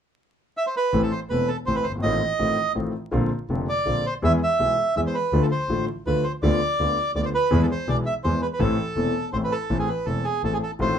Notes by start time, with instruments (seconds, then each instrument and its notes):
0.57 bandoneon E5
0.67 bandoneon C5
0.77 bandoneon B4
0.93 grand piano A1 A2 E3 A3 C4 A4, double bass A1
1.03 bandoneon A4
1.12 bandoneon C5
1.30 grand piano E1 E2 E3 A3 C4 A4, double bass E1, bandoneon B4
1.48 bandoneon A4
1.66 double bass A1, grand piano A1 A2 E3 A3 C4 A4, bandoneon C5
1.75 bandoneon B4
1.83 double bass G1, bandoneon C5
1.90 grand piano F#1
1.95 grand piano G1 G#1
2.03 grand piano A1 A2 D#3 A3 C4 F4, double bass A1, bandoneon D#5
2.39 grand piano A1 A2 D#3 A3 C4 F4, double bass A1
2.75 grand piano A1 A2 D#3 A3 C4 F4, double bass A1
3.11 grand piano A#1 A#2 D3 A#3 C4 F4, double bass A#1
3.50 double bass F1, grand piano F1 F2 D3 A#3 C4 F4
3.69 bandoneon D5
3.86 double bass A#1, grand piano A#1 A#2 D3 A#3 C4 F4
4.06 bandoneon C5
4.22 grand piano E2 E3 G#3 B3 G#4, double bass E2, bandoneon E5
4.43 bandoneon E5
4.59 double bass B1, grand piano B1 B2 E3 G#3 B3 G#4
4.96 double bass E2, grand piano E2 E3 G#3 B3 G#4, bandoneon E5
5.07 bandoneon C5
5.15 bandoneon B4
5.33 double bass D2, grand piano D2 D3 F3 A3 F4
5.42 bandoneon A4
5.51 bandoneon C5
5.69 double bass A1, grand piano A1 A2 D3 F3 A3 F4
6.06 double bass D2, grand piano D2 D3 F3 A3 F4, bandoneon B4
6.24 bandoneon C5
6.43 double bass D2, grand piano D2 D3 F3 B3 F4, bandoneon D5
6.79 double bass D2, grand piano D2 D3 F3 B3 F4
7.15 double bass D2, grand piano D2 D3 F3 B3 F4, bandoneon D5
7.23 bandoneon C5 D5
7.35 bandoneon B4
7.51 grand piano E2 E3 G#3 B3 G#4, double bass E2
7.63 bandoneon A4
7.71 bandoneon C5
7.87 grand piano B1 B2 E3 G#3 B3 G#4, double bass B1, bandoneon D5
8.06 bandoneon E5
8.24 double bass E2, grand piano E2 E3 G#3 B3 G#4, bandoneon C5
8.42 bandoneon B4
8.53 bandoneon B4
8.59 grand piano A1 A2 E3 A3 C4 A4, double bass A1, bandoneon A4
8.96 grand piano E1 E2 E3 A3 C4 A4, double bass E1
9.33 grand piano A1 A2 E3 A3 C4 A4, double bass A1, bandoneon C5
9.44 bandoneon B4
9.52 bandoneon A4
9.70 grand piano A1 A2 E3 A3 C4 A4, double bass A1
9.79 bandoneon G#4
9.89 bandoneon B4
10.06 grand piano E1 E2 E3 A3 C4 A4, double bass E1, bandoneon A4
10.24 bandoneon G#4
10.44 double bass A1, grand piano A1 A2 E3 A3 C4 A4, bandoneon A4
10.54 bandoneon G#4
10.63 bandoneon A4
10.79 grand piano A1 A2 D#3 A3 C4 F4, double bass A1, bandoneon C5